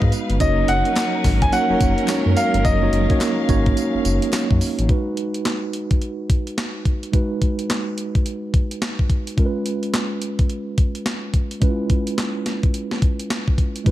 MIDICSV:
0, 0, Header, 1, 6, 480
1, 0, Start_track
1, 0, Tempo, 560748
1, 346, Time_signature, 4, 2, 24, 8
1, 11910, End_track
2, 0, Start_track
2, 0, Title_t, "Grand piano"
2, 0, Program_c, 0, 0
2, 346, Note_on_c, 0, 75, 97
2, 587, Note_on_c, 0, 78, 117
2, 593, Note_off_c, 0, 75, 0
2, 1180, Note_off_c, 0, 78, 0
2, 1216, Note_on_c, 0, 80, 99
2, 1300, Note_off_c, 0, 80, 0
2, 1308, Note_on_c, 0, 78, 119
2, 2027, Note_on_c, 0, 77, 105
2, 2048, Note_off_c, 0, 78, 0
2, 2250, Note_off_c, 0, 77, 0
2, 2264, Note_on_c, 0, 75, 95
2, 3671, Note_off_c, 0, 75, 0
2, 11910, End_track
3, 0, Start_track
3, 0, Title_t, "String section"
3, 0, Program_c, 1, 48
3, 0, Note_on_c, 1, 56, 92
3, 0, Note_on_c, 1, 63, 82
3, 0, Note_on_c, 1, 71, 94
3, 0, Note_on_c, 1, 77, 83
3, 311, Note_off_c, 1, 63, 0
3, 311, Note_off_c, 1, 71, 0
3, 313, Note_off_c, 1, 56, 0
3, 326, Note_off_c, 1, 77, 0
3, 344, Note_on_c, 1, 54, 92
3, 344, Note_on_c, 1, 61, 83
3, 344, Note_on_c, 1, 63, 85
3, 344, Note_on_c, 1, 70, 99
3, 2245, Note_off_c, 1, 63, 0
3, 2268, Note_on_c, 1, 77, 81
3, 4151, Note_off_c, 1, 54, 0
3, 4151, Note_off_c, 1, 61, 0
3, 4151, Note_off_c, 1, 70, 0
3, 4168, Note_off_c, 1, 77, 0
3, 11910, End_track
4, 0, Start_track
4, 0, Title_t, "Tine electric piano"
4, 0, Program_c, 2, 4
4, 0, Control_c, 2, 64, 127
4, 0, Note_on_c, 2, 56, 89
4, 0, Note_on_c, 2, 59, 81
4, 0, Note_on_c, 2, 63, 80
4, 0, Note_on_c, 2, 66, 85
4, 0, Note_on_c, 2, 71, 103
4, 338, Note_on_c, 2, 58, 81
4, 342, Note_on_c, 2, 61, 82
4, 345, Note_off_c, 2, 63, 0
4, 345, Note_on_c, 2, 63, 83
4, 346, Note_off_c, 2, 66, 0
4, 346, Note_on_c, 2, 66, 77
4, 349, Note_on_c, 2, 73, 97
4, 356, Control_c, 2, 64, 0
4, 358, Note_off_c, 2, 56, 0
4, 360, Note_off_c, 2, 59, 0
4, 363, Note_off_c, 2, 71, 0
4, 510, Control_c, 2, 64, 127
4, 1018, Note_off_c, 2, 58, 0
4, 1020, Note_off_c, 2, 61, 0
4, 1022, Note_off_c, 2, 63, 0
4, 1022, Note_off_c, 2, 66, 0
4, 1024, Note_off_c, 2, 73, 0
4, 1300, Note_on_c, 2, 58, 97
4, 1302, Note_on_c, 2, 61, 84
4, 1303, Note_on_c, 2, 63, 79
4, 1307, Note_on_c, 2, 66, 79
4, 1309, Note_on_c, 2, 73, 98
4, 1405, Note_off_c, 2, 58, 0
4, 1406, Note_off_c, 2, 61, 0
4, 1407, Note_off_c, 2, 63, 0
4, 1409, Note_off_c, 2, 66, 0
4, 1410, Note_off_c, 2, 73, 0
4, 1447, Note_on_c, 2, 58, 80
4, 1452, Note_on_c, 2, 61, 68
4, 1454, Note_on_c, 2, 63, 73
4, 1456, Note_on_c, 2, 66, 73
4, 1459, Note_on_c, 2, 73, 93
4, 1697, Note_off_c, 2, 58, 0
4, 1700, Note_off_c, 2, 61, 0
4, 1701, Note_off_c, 2, 63, 0
4, 1701, Note_off_c, 2, 66, 0
4, 1703, Note_off_c, 2, 73, 0
4, 1783, Note_on_c, 2, 56, 72
4, 1786, Note_on_c, 2, 61, 76
4, 1787, Note_on_c, 2, 63, 77
4, 1791, Note_on_c, 2, 66, 81
4, 1794, Note_on_c, 2, 73, 97
4, 1839, Note_on_c, 2, 58, 82
4, 1853, Note_off_c, 2, 56, 0
4, 2216, Note_off_c, 2, 61, 0
4, 2216, Note_off_c, 2, 63, 0
4, 2218, Note_off_c, 2, 66, 0
4, 2219, Note_off_c, 2, 73, 0
4, 2242, Note_off_c, 2, 58, 0
4, 2411, Note_on_c, 2, 58, 85
4, 2413, Note_on_c, 2, 61, 78
4, 2415, Note_on_c, 2, 63, 73
4, 2419, Note_on_c, 2, 66, 75
4, 2420, Note_on_c, 2, 73, 99
4, 2560, Note_off_c, 2, 58, 0
4, 2562, Note_off_c, 2, 61, 0
4, 2563, Note_off_c, 2, 63, 0
4, 2564, Note_off_c, 2, 66, 0
4, 2565, Note_off_c, 2, 73, 0
4, 2652, Note_on_c, 2, 58, 88
4, 2655, Note_on_c, 2, 61, 82
4, 2656, Note_on_c, 2, 63, 79
4, 2659, Note_on_c, 2, 66, 82
4, 2663, Note_on_c, 2, 73, 96
4, 2900, Note_off_c, 2, 58, 0
4, 2901, Note_off_c, 2, 61, 0
4, 2902, Note_off_c, 2, 63, 0
4, 2903, Note_off_c, 2, 66, 0
4, 2905, Note_off_c, 2, 73, 0
4, 2983, Note_on_c, 2, 58, 108
4, 2985, Note_on_c, 2, 61, 98
4, 2990, Note_on_c, 2, 63, 95
4, 2990, Note_on_c, 2, 66, 99
4, 2993, Note_on_c, 2, 73, 119
4, 3661, Note_off_c, 2, 58, 0
4, 3662, Note_off_c, 2, 61, 0
4, 3664, Note_off_c, 2, 63, 0
4, 3664, Note_off_c, 2, 66, 0
4, 3666, Note_off_c, 2, 73, 0
4, 4177, Note_on_c, 2, 56, 69
4, 4184, Note_on_c, 2, 63, 69
4, 4191, Note_on_c, 2, 66, 70
4, 4196, Control_c, 2, 64, 0
4, 4198, Note_on_c, 2, 71, 84
4, 4364, Control_c, 2, 64, 127
4, 6067, Note_off_c, 2, 56, 0
4, 6070, Note_off_c, 2, 63, 0
4, 6074, Note_off_c, 2, 66, 0
4, 6077, Note_off_c, 2, 71, 0
4, 6095, Note_on_c, 2, 56, 69
4, 6103, Note_on_c, 2, 63, 67
4, 6110, Note_on_c, 2, 66, 63
4, 6117, Note_on_c, 2, 71, 77
4, 7986, Note_off_c, 2, 56, 0
4, 7990, Note_off_c, 2, 63, 0
4, 7994, Note_off_c, 2, 66, 0
4, 7997, Note_off_c, 2, 71, 0
4, 8019, Note_on_c, 2, 56, 73
4, 8026, Note_on_c, 2, 61, 68
4, 8032, Note_on_c, 2, 65, 70
4, 8037, Control_c, 2, 64, 0
4, 8041, Note_on_c, 2, 70, 69
4, 8094, Note_on_c, 2, 71, 79
4, 8102, Note_off_c, 2, 70, 0
4, 8202, Control_c, 2, 64, 127
4, 9908, Note_off_c, 2, 56, 0
4, 9912, Note_off_c, 2, 61, 0
4, 9915, Note_off_c, 2, 65, 0
4, 9934, Note_on_c, 2, 56, 75
4, 9942, Note_on_c, 2, 61, 71
4, 9946, Note_off_c, 2, 71, 0
4, 9949, Note_on_c, 2, 64, 52
4, 9955, Note_on_c, 2, 71, 80
4, 10003, Note_on_c, 2, 65, 65
4, 10016, Note_off_c, 2, 64, 0
4, 11826, Note_off_c, 2, 56, 0
4, 11830, Note_off_c, 2, 61, 0
4, 11836, Note_off_c, 2, 71, 0
4, 11852, Note_on_c, 2, 56, 78
4, 11860, Note_off_c, 2, 65, 0
4, 11860, Note_on_c, 2, 63, 65
4, 11867, Note_on_c, 2, 66, 64
4, 11875, Note_on_c, 2, 71, 86
4, 11878, Control_c, 2, 64, 0
4, 11910, Note_off_c, 2, 56, 0
4, 11910, Note_off_c, 2, 63, 0
4, 11910, Note_off_c, 2, 66, 0
4, 11910, Note_off_c, 2, 71, 0
4, 11910, End_track
5, 0, Start_track
5, 0, Title_t, "Analog synth bass"
5, 0, Program_c, 3, 38
5, 17, Note_on_c, 3, 44, 105
5, 93, Note_off_c, 3, 44, 0
5, 255, Note_on_c, 3, 31, 89
5, 332, Note_off_c, 3, 31, 0
5, 346, Note_on_c, 3, 30, 109
5, 549, Note_off_c, 3, 30, 0
5, 586, Note_on_c, 3, 30, 107
5, 712, Note_off_c, 3, 30, 0
5, 1066, Note_on_c, 3, 32, 107
5, 1269, Note_off_c, 3, 32, 0
5, 1455, Note_on_c, 3, 30, 49
5, 1492, Note_off_c, 3, 30, 0
5, 1548, Note_on_c, 3, 30, 94
5, 1673, Note_off_c, 3, 30, 0
5, 1934, Note_on_c, 3, 42, 95
5, 2012, Note_off_c, 3, 42, 0
5, 2174, Note_on_c, 3, 31, 90
5, 2252, Note_off_c, 3, 31, 0
5, 2268, Note_on_c, 3, 30, 121
5, 2471, Note_off_c, 3, 30, 0
5, 2504, Note_on_c, 3, 30, 106
5, 2631, Note_off_c, 3, 30, 0
5, 2988, Note_on_c, 3, 32, 101
5, 3191, Note_off_c, 3, 32, 0
5, 3375, Note_on_c, 3, 30, 52
5, 3412, Note_off_c, 3, 30, 0
5, 3467, Note_on_c, 3, 30, 95
5, 3592, Note_off_c, 3, 30, 0
5, 3858, Note_on_c, 3, 42, 101
5, 3934, Note_off_c, 3, 42, 0
5, 4097, Note_on_c, 3, 33, 93
5, 4173, Note_off_c, 3, 33, 0
5, 11866, Note_on_c, 3, 32, 103
5, 11910, Note_off_c, 3, 32, 0
5, 11910, End_track
6, 0, Start_track
6, 0, Title_t, "Drums"
6, 15, Note_on_c, 9, 36, 102
6, 101, Note_off_c, 9, 36, 0
6, 104, Note_on_c, 9, 42, 74
6, 105, Note_on_c, 9, 54, 66
6, 189, Note_off_c, 9, 42, 0
6, 191, Note_off_c, 9, 54, 0
6, 253, Note_on_c, 9, 42, 62
6, 339, Note_off_c, 9, 42, 0
6, 344, Note_on_c, 9, 42, 78
6, 344, Note_on_c, 9, 54, 71
6, 345, Note_on_c, 9, 36, 119
6, 430, Note_off_c, 9, 36, 0
6, 430, Note_off_c, 9, 42, 0
6, 430, Note_off_c, 9, 54, 0
6, 584, Note_on_c, 9, 42, 86
6, 670, Note_off_c, 9, 42, 0
6, 730, Note_on_c, 9, 42, 56
6, 816, Note_off_c, 9, 42, 0
6, 824, Note_on_c, 9, 38, 115
6, 824, Note_on_c, 9, 42, 68
6, 825, Note_on_c, 9, 54, 86
6, 828, Note_on_c, 9, 39, 97
6, 830, Note_off_c, 9, 39, 0
6, 830, Note_on_c, 9, 39, 86
6, 910, Note_off_c, 9, 38, 0
6, 910, Note_off_c, 9, 42, 0
6, 911, Note_off_c, 9, 54, 0
6, 916, Note_off_c, 9, 39, 0
6, 1064, Note_on_c, 9, 46, 76
6, 1064, Note_on_c, 9, 54, 68
6, 1066, Note_on_c, 9, 36, 93
6, 1066, Note_on_c, 9, 38, 65
6, 1150, Note_off_c, 9, 46, 0
6, 1150, Note_off_c, 9, 54, 0
6, 1151, Note_off_c, 9, 36, 0
6, 1151, Note_off_c, 9, 38, 0
6, 1214, Note_on_c, 9, 42, 56
6, 1215, Note_on_c, 9, 36, 93
6, 1299, Note_off_c, 9, 42, 0
6, 1301, Note_off_c, 9, 36, 0
6, 1305, Note_on_c, 9, 42, 75
6, 1306, Note_on_c, 9, 54, 69
6, 1391, Note_off_c, 9, 42, 0
6, 1392, Note_off_c, 9, 54, 0
6, 1545, Note_on_c, 9, 54, 73
6, 1546, Note_on_c, 9, 42, 80
6, 1547, Note_on_c, 9, 36, 119
6, 1631, Note_off_c, 9, 42, 0
6, 1631, Note_off_c, 9, 54, 0
6, 1632, Note_off_c, 9, 36, 0
6, 1694, Note_on_c, 9, 42, 54
6, 1779, Note_off_c, 9, 42, 0
6, 1782, Note_on_c, 9, 39, 89
6, 1783, Note_on_c, 9, 54, 99
6, 1786, Note_on_c, 9, 38, 114
6, 1786, Note_on_c, 9, 42, 82
6, 1791, Note_off_c, 9, 39, 0
6, 1791, Note_on_c, 9, 39, 94
6, 1869, Note_off_c, 9, 54, 0
6, 1871, Note_off_c, 9, 38, 0
6, 1872, Note_off_c, 9, 42, 0
6, 1877, Note_off_c, 9, 39, 0
6, 2025, Note_on_c, 9, 42, 72
6, 2026, Note_on_c, 9, 54, 72
6, 2111, Note_off_c, 9, 42, 0
6, 2112, Note_off_c, 9, 54, 0
6, 2176, Note_on_c, 9, 42, 57
6, 2262, Note_off_c, 9, 42, 0
6, 2267, Note_on_c, 9, 36, 126
6, 2267, Note_on_c, 9, 42, 78
6, 2267, Note_on_c, 9, 54, 71
6, 2352, Note_off_c, 9, 36, 0
6, 2352, Note_off_c, 9, 42, 0
6, 2352, Note_off_c, 9, 54, 0
6, 2507, Note_on_c, 9, 42, 85
6, 2593, Note_off_c, 9, 42, 0
6, 2652, Note_on_c, 9, 42, 55
6, 2654, Note_on_c, 9, 36, 89
6, 2738, Note_off_c, 9, 42, 0
6, 2739, Note_off_c, 9, 36, 0
6, 2747, Note_on_c, 9, 38, 114
6, 2747, Note_on_c, 9, 42, 63
6, 2748, Note_on_c, 9, 54, 83
6, 2750, Note_on_c, 9, 39, 91
6, 2753, Note_off_c, 9, 39, 0
6, 2753, Note_on_c, 9, 39, 90
6, 2833, Note_off_c, 9, 38, 0
6, 2833, Note_off_c, 9, 42, 0
6, 2833, Note_off_c, 9, 54, 0
6, 2838, Note_off_c, 9, 39, 0
6, 2986, Note_on_c, 9, 42, 75
6, 2986, Note_on_c, 9, 54, 69
6, 2987, Note_on_c, 9, 36, 98
6, 3071, Note_off_c, 9, 42, 0
6, 3071, Note_off_c, 9, 54, 0
6, 3073, Note_off_c, 9, 36, 0
6, 3135, Note_on_c, 9, 42, 51
6, 3137, Note_on_c, 9, 36, 97
6, 3220, Note_off_c, 9, 42, 0
6, 3222, Note_off_c, 9, 36, 0
6, 3227, Note_on_c, 9, 42, 68
6, 3228, Note_on_c, 9, 54, 70
6, 3313, Note_off_c, 9, 42, 0
6, 3313, Note_off_c, 9, 54, 0
6, 3466, Note_on_c, 9, 54, 77
6, 3467, Note_on_c, 9, 42, 77
6, 3552, Note_off_c, 9, 54, 0
6, 3553, Note_off_c, 9, 42, 0
6, 3615, Note_on_c, 9, 42, 58
6, 3700, Note_off_c, 9, 42, 0
6, 3703, Note_on_c, 9, 54, 100
6, 3706, Note_on_c, 9, 38, 111
6, 3706, Note_on_c, 9, 39, 84
6, 3707, Note_on_c, 9, 42, 79
6, 3712, Note_off_c, 9, 39, 0
6, 3712, Note_on_c, 9, 39, 92
6, 3789, Note_off_c, 9, 54, 0
6, 3792, Note_off_c, 9, 38, 0
6, 3793, Note_off_c, 9, 42, 0
6, 3797, Note_off_c, 9, 39, 0
6, 3857, Note_on_c, 9, 36, 94
6, 3943, Note_off_c, 9, 36, 0
6, 3947, Note_on_c, 9, 46, 67
6, 3948, Note_on_c, 9, 54, 75
6, 4033, Note_off_c, 9, 46, 0
6, 4034, Note_off_c, 9, 54, 0
6, 4097, Note_on_c, 9, 42, 63
6, 4183, Note_off_c, 9, 42, 0
6, 4187, Note_on_c, 9, 42, 67
6, 4188, Note_on_c, 9, 36, 111
6, 4273, Note_off_c, 9, 36, 0
6, 4273, Note_off_c, 9, 42, 0
6, 4427, Note_on_c, 9, 42, 76
6, 4512, Note_off_c, 9, 42, 0
6, 4574, Note_on_c, 9, 42, 50
6, 4660, Note_off_c, 9, 42, 0
6, 4667, Note_on_c, 9, 42, 67
6, 4668, Note_on_c, 9, 38, 101
6, 4673, Note_on_c, 9, 39, 77
6, 4753, Note_off_c, 9, 38, 0
6, 4753, Note_off_c, 9, 42, 0
6, 4759, Note_off_c, 9, 39, 0
6, 4908, Note_on_c, 9, 42, 65
6, 4994, Note_off_c, 9, 42, 0
6, 5057, Note_on_c, 9, 42, 48
6, 5058, Note_on_c, 9, 36, 89
6, 5142, Note_off_c, 9, 42, 0
6, 5143, Note_off_c, 9, 36, 0
6, 5149, Note_on_c, 9, 42, 62
6, 5235, Note_off_c, 9, 42, 0
6, 5390, Note_on_c, 9, 36, 103
6, 5390, Note_on_c, 9, 42, 75
6, 5475, Note_off_c, 9, 36, 0
6, 5475, Note_off_c, 9, 42, 0
6, 5538, Note_on_c, 9, 42, 51
6, 5624, Note_off_c, 9, 42, 0
6, 5631, Note_on_c, 9, 38, 105
6, 5631, Note_on_c, 9, 42, 64
6, 5636, Note_on_c, 9, 39, 82
6, 5716, Note_off_c, 9, 38, 0
6, 5717, Note_off_c, 9, 42, 0
6, 5722, Note_off_c, 9, 39, 0
6, 5867, Note_on_c, 9, 36, 84
6, 5868, Note_on_c, 9, 42, 69
6, 5953, Note_off_c, 9, 36, 0
6, 5954, Note_off_c, 9, 42, 0
6, 6018, Note_on_c, 9, 42, 54
6, 6104, Note_off_c, 9, 42, 0
6, 6108, Note_on_c, 9, 36, 107
6, 6108, Note_on_c, 9, 42, 68
6, 6193, Note_off_c, 9, 36, 0
6, 6193, Note_off_c, 9, 42, 0
6, 6348, Note_on_c, 9, 36, 75
6, 6348, Note_on_c, 9, 42, 76
6, 6434, Note_off_c, 9, 36, 0
6, 6434, Note_off_c, 9, 42, 0
6, 6495, Note_on_c, 9, 42, 47
6, 6581, Note_off_c, 9, 42, 0
6, 6589, Note_on_c, 9, 42, 64
6, 6590, Note_on_c, 9, 38, 102
6, 6595, Note_on_c, 9, 39, 91
6, 6675, Note_off_c, 9, 38, 0
6, 6675, Note_off_c, 9, 42, 0
6, 6681, Note_off_c, 9, 39, 0
6, 6828, Note_on_c, 9, 42, 64
6, 6914, Note_off_c, 9, 42, 0
6, 6977, Note_on_c, 9, 42, 51
6, 6978, Note_on_c, 9, 36, 80
6, 7063, Note_off_c, 9, 36, 0
6, 7063, Note_off_c, 9, 42, 0
6, 7068, Note_on_c, 9, 42, 66
6, 7154, Note_off_c, 9, 42, 0
6, 7309, Note_on_c, 9, 36, 99
6, 7309, Note_on_c, 9, 42, 69
6, 7394, Note_off_c, 9, 36, 0
6, 7394, Note_off_c, 9, 42, 0
6, 7458, Note_on_c, 9, 42, 53
6, 7543, Note_off_c, 9, 42, 0
6, 7548, Note_on_c, 9, 38, 111
6, 7549, Note_on_c, 9, 42, 71
6, 7554, Note_on_c, 9, 39, 85
6, 7634, Note_off_c, 9, 38, 0
6, 7635, Note_off_c, 9, 42, 0
6, 7639, Note_off_c, 9, 39, 0
6, 7697, Note_on_c, 9, 36, 91
6, 7783, Note_off_c, 9, 36, 0
6, 7786, Note_on_c, 9, 36, 84
6, 7787, Note_on_c, 9, 42, 69
6, 7872, Note_off_c, 9, 36, 0
6, 7872, Note_off_c, 9, 42, 0
6, 7937, Note_on_c, 9, 42, 58
6, 8022, Note_off_c, 9, 42, 0
6, 8026, Note_on_c, 9, 42, 64
6, 8027, Note_on_c, 9, 36, 110
6, 8112, Note_off_c, 9, 36, 0
6, 8112, Note_off_c, 9, 42, 0
6, 8266, Note_on_c, 9, 42, 73
6, 8352, Note_off_c, 9, 42, 0
6, 8413, Note_on_c, 9, 42, 48
6, 8498, Note_off_c, 9, 42, 0
6, 8505, Note_on_c, 9, 42, 63
6, 8506, Note_on_c, 9, 38, 104
6, 8511, Note_on_c, 9, 39, 92
6, 8591, Note_off_c, 9, 38, 0
6, 8591, Note_off_c, 9, 42, 0
6, 8597, Note_off_c, 9, 39, 0
6, 8745, Note_on_c, 9, 42, 69
6, 8830, Note_off_c, 9, 42, 0
6, 8892, Note_on_c, 9, 42, 51
6, 8895, Note_on_c, 9, 36, 84
6, 8978, Note_off_c, 9, 42, 0
6, 8981, Note_off_c, 9, 36, 0
6, 8984, Note_on_c, 9, 42, 63
6, 9070, Note_off_c, 9, 42, 0
6, 9225, Note_on_c, 9, 42, 77
6, 9226, Note_on_c, 9, 36, 99
6, 9311, Note_off_c, 9, 42, 0
6, 9312, Note_off_c, 9, 36, 0
6, 9373, Note_on_c, 9, 42, 56
6, 9459, Note_off_c, 9, 42, 0
6, 9465, Note_on_c, 9, 38, 104
6, 9466, Note_on_c, 9, 42, 68
6, 9471, Note_on_c, 9, 39, 81
6, 9551, Note_off_c, 9, 38, 0
6, 9552, Note_off_c, 9, 42, 0
6, 9557, Note_off_c, 9, 39, 0
6, 9704, Note_on_c, 9, 36, 83
6, 9704, Note_on_c, 9, 42, 64
6, 9790, Note_off_c, 9, 36, 0
6, 9790, Note_off_c, 9, 42, 0
6, 9853, Note_on_c, 9, 42, 56
6, 9939, Note_off_c, 9, 42, 0
6, 9944, Note_on_c, 9, 42, 67
6, 9945, Note_on_c, 9, 36, 112
6, 10029, Note_off_c, 9, 42, 0
6, 10030, Note_off_c, 9, 36, 0
6, 10183, Note_on_c, 9, 42, 76
6, 10185, Note_on_c, 9, 36, 84
6, 10269, Note_off_c, 9, 42, 0
6, 10271, Note_off_c, 9, 36, 0
6, 10331, Note_on_c, 9, 42, 50
6, 10417, Note_off_c, 9, 42, 0
6, 10425, Note_on_c, 9, 38, 111
6, 10425, Note_on_c, 9, 42, 62
6, 10431, Note_on_c, 9, 39, 82
6, 10511, Note_off_c, 9, 38, 0
6, 10511, Note_off_c, 9, 42, 0
6, 10517, Note_off_c, 9, 39, 0
6, 10665, Note_on_c, 9, 42, 65
6, 10667, Note_on_c, 9, 38, 63
6, 10751, Note_off_c, 9, 42, 0
6, 10752, Note_off_c, 9, 38, 0
6, 10814, Note_on_c, 9, 42, 53
6, 10815, Note_on_c, 9, 36, 86
6, 10899, Note_off_c, 9, 42, 0
6, 10900, Note_off_c, 9, 36, 0
6, 10906, Note_on_c, 9, 42, 69
6, 10991, Note_off_c, 9, 42, 0
6, 11054, Note_on_c, 9, 38, 66
6, 11140, Note_off_c, 9, 38, 0
6, 11146, Note_on_c, 9, 42, 72
6, 11147, Note_on_c, 9, 36, 98
6, 11232, Note_off_c, 9, 36, 0
6, 11232, Note_off_c, 9, 42, 0
6, 11295, Note_on_c, 9, 42, 52
6, 11381, Note_off_c, 9, 42, 0
6, 11388, Note_on_c, 9, 38, 106
6, 11389, Note_on_c, 9, 42, 72
6, 11394, Note_on_c, 9, 39, 82
6, 11474, Note_off_c, 9, 38, 0
6, 11474, Note_off_c, 9, 42, 0
6, 11479, Note_off_c, 9, 39, 0
6, 11536, Note_on_c, 9, 36, 87
6, 11622, Note_off_c, 9, 36, 0
6, 11625, Note_on_c, 9, 36, 82
6, 11627, Note_on_c, 9, 42, 64
6, 11711, Note_off_c, 9, 36, 0
6, 11712, Note_off_c, 9, 42, 0
6, 11776, Note_on_c, 9, 42, 53
6, 11861, Note_off_c, 9, 42, 0
6, 11866, Note_on_c, 9, 36, 112
6, 11867, Note_on_c, 9, 42, 69
6, 11910, Note_off_c, 9, 36, 0
6, 11910, Note_off_c, 9, 42, 0
6, 11910, End_track
0, 0, End_of_file